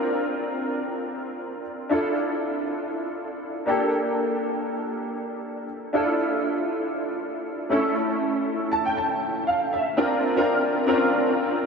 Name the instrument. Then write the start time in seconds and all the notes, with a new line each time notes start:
grand piano
Already playing: C4 D4 F4 A#4
1.90 D4 E4 F4 A4
3.66 A#3 D4 G4 A4
5.93 D4 E4 F4 A4
7.69 A3 C#4 E4 A4
8.72 A5
8.85 G5
8.97 A5
9.47 F5
9.73 E5
9.97 C4 D4 F4 A#4
10.36 C4 D4 F4 A#4
10.87 C4 C#4 F4 A#4
10.93 D4